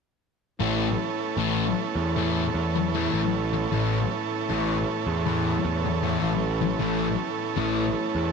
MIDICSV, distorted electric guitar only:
0, 0, Header, 1, 3, 480
1, 0, Start_track
1, 0, Key_signature, 3, "major"
1, 0, Tempo, 775194
1, 376, Time_signature, 4, 2, 24, 8
1, 5152, End_track
2, 0, Start_track
2, 0, Title_t, "Distorted electric guitar"
2, 0, Program_c, 0, 30
2, 368, Note_on_c, 0, 45, 65
2, 368, Note_on_c, 0, 52, 81
2, 374, Note_on_c, 0, 57, 82
2, 528, Note_off_c, 0, 45, 0
2, 529, Note_off_c, 0, 52, 0
2, 532, Note_off_c, 0, 57, 0
2, 852, Note_on_c, 0, 45, 71
2, 854, Note_on_c, 0, 52, 89
2, 859, Note_on_c, 0, 57, 78
2, 1011, Note_off_c, 0, 45, 0
2, 1012, Note_off_c, 0, 52, 0
2, 1014, Note_off_c, 0, 57, 0
2, 1338, Note_on_c, 0, 45, 74
2, 1343, Note_on_c, 0, 52, 85
2, 1344, Note_on_c, 0, 57, 80
2, 1494, Note_off_c, 0, 45, 0
2, 1496, Note_off_c, 0, 52, 0
2, 1497, Note_off_c, 0, 57, 0
2, 1821, Note_on_c, 0, 45, 66
2, 1825, Note_on_c, 0, 52, 76
2, 1831, Note_on_c, 0, 57, 92
2, 1976, Note_off_c, 0, 45, 0
2, 1977, Note_off_c, 0, 52, 0
2, 1981, Note_off_c, 0, 57, 0
2, 2303, Note_on_c, 0, 45, 88
2, 2307, Note_on_c, 0, 52, 80
2, 2310, Note_on_c, 0, 57, 78
2, 2456, Note_off_c, 0, 45, 0
2, 2458, Note_off_c, 0, 52, 0
2, 2460, Note_off_c, 0, 57, 0
2, 2779, Note_on_c, 0, 45, 84
2, 2783, Note_on_c, 0, 52, 77
2, 2788, Note_on_c, 0, 57, 92
2, 2935, Note_off_c, 0, 45, 0
2, 2936, Note_off_c, 0, 52, 0
2, 2939, Note_off_c, 0, 57, 0
2, 3256, Note_on_c, 0, 45, 71
2, 3261, Note_on_c, 0, 52, 87
2, 3264, Note_on_c, 0, 57, 92
2, 3412, Note_off_c, 0, 45, 0
2, 3415, Note_off_c, 0, 52, 0
2, 3417, Note_off_c, 0, 57, 0
2, 3731, Note_on_c, 0, 45, 75
2, 3734, Note_on_c, 0, 52, 78
2, 3736, Note_on_c, 0, 57, 88
2, 3890, Note_off_c, 0, 45, 0
2, 3891, Note_off_c, 0, 52, 0
2, 3892, Note_off_c, 0, 57, 0
2, 4204, Note_on_c, 0, 45, 73
2, 4209, Note_on_c, 0, 52, 83
2, 4212, Note_on_c, 0, 57, 85
2, 4365, Note_off_c, 0, 45, 0
2, 4368, Note_off_c, 0, 52, 0
2, 4369, Note_off_c, 0, 57, 0
2, 4685, Note_on_c, 0, 45, 88
2, 4689, Note_on_c, 0, 52, 84
2, 4693, Note_on_c, 0, 57, 91
2, 4845, Note_off_c, 0, 45, 0
2, 4847, Note_off_c, 0, 52, 0
2, 4849, Note_off_c, 0, 57, 0
2, 5152, End_track
3, 0, Start_track
3, 0, Title_t, "Muted distorted electric guitar strokes"
3, 1704, Note_on_c, 9, 29, 46
3, 1766, Note_off_c, 9, 29, 0
3, 2187, Note_on_c, 9, 29, 45
3, 2249, Note_off_c, 9, 29, 0
3, 3619, Note_on_c, 9, 29, 54
3, 3681, Note_off_c, 9, 29, 0
3, 4093, Note_on_c, 9, 29, 45
3, 4155, Note_off_c, 9, 29, 0
3, 5152, End_track
0, 0, End_of_file